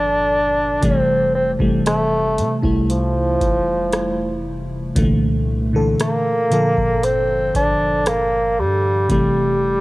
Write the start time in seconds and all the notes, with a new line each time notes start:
Already playing: G1 A#2 D3 F3 D4 A4
0.81 F1 C3 E3 G3 A3 C4, kick, closed hi-hat
1.35 C4
1.59 F1 C3 E3 G3 A3, kick
1.86 A3, cross-stick, closed hi-hat
2.38 C3, closed hi-hat
2.62 C2 C3 G3 A3 E4, kick
2.90 F3, closed hi-hat
3.41 F1, kick, closed hi-hat
3.93 cross-stick, closed hi-hat
4.95 C2 A#2 D3 E3 A3, kick, closed hi-hat
5.73 A#2 D3 E3 A4
6.00 A#3, cross-stick, closed hi-hat
6.50 A#2 D3 F3 A4, closed hi-hat
6.77 G1, kick
7.03 C4, closed hi-hat
7.55 G1 D4, kick, closed hi-hat
8.06 A#3, cross-stick, closed hi-hat
8.59 G2 G3
9.09 F1 C3 E3 G3 A3, kick, closed hi-hat